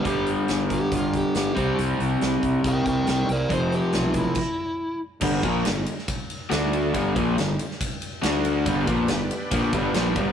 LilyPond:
<<
  \new Staff \with { instrumentName = "Electric slide guitar" } { \time 4/4 \key c \major \tempo 4 = 139 g'8 r4 g'8 f'8 g'8 g'4 | r2 <bes' g''>8 <bes' g''>8 <bes' g''>8 <bes' d''>8 | c''8 g'8 f'8 e'2 r8 | r1 |
r1 | r1 | }
  \new Staff \with { instrumentName = "Tonewheel organ" } { \time 4/4 \key c \major r1 | r1 | r1 | r1 |
r1 | \tuplet 3/2 { <c' ees' aes' c''>8 <b d' g' b'>4~ } <b d' g' b'>2. | }
  \new Staff \with { instrumentName = "Overdriven electric guitar" } { \clef bass \time 4/4 \key c \major <g, d g>2.~ <g, d g>8 <c g c'>8~ | <c g c'>2.~ <c g c'>8 r8 | <f, c f>2 r2 | <g, d g>8 <bes, f bes>8 <g, d>8 r4. <d a d'>4 |
<g, d g>8 <bes, f bes>8 <g, d>8 r4. <d a d'>4 | <g, d g>8 <bes, f bes>8 <g, d>8 r8 <bes, f bes>8 <g, d g>8 <bes, f bes>8 <g, d g>8 | }
  \new Staff \with { instrumentName = "Fingered electric bass" } { \clef bass \time 4/4 \key c \major g,,4 g,,4 g,,4 g,,8 c,8 | c,8 c,8 c,8 c,8 c,8 c,8 c,8 c,8 | f,,4 b,,4 r2 | g,,8 bes,,8 g,,8 r4. d,4 |
g,,8 bes,,8 g,,8 r4. d,4 | g,,8 bes,,8 g,,8 r8 bes,,8 g,,8 bes,,8 g,,8 | }
  \new DrumStaff \with { instrumentName = "Drums" } \drummode { \time 4/4 <hh bd>8 hh8 <hh sn>8 <hh bd>8 <hh bd>8 <hh bd>8 <hh sn>8 <hh bd>8 | hh8 hh8 <hh sn>8 <hh bd>8 <hh bd>8 <hh bd>8 <hh sn>8 hh8 | <hh bd>8 hh8 <hh sn>8 <hh bd>8 <cymc bd>4 r4 | <cymc bd>8 <bd cymr>8 <cymr sn>8 cymr16 sn16 <bd cymr>8 cymr8 <cymr sn>8 cymr8 |
<bd cymr>8 <bd cymr>8 <cymr sn>8 cymr16 sn16 <bd cymr>8 cymr8 <cymr sn>8 cymr8 | <bd cymr>8 <bd cymr>8 <cymr sn>8 cymr8 <bd cymr>8 <bd cymr>8 <cymr sn>8 <bd cymr>8 | }
>>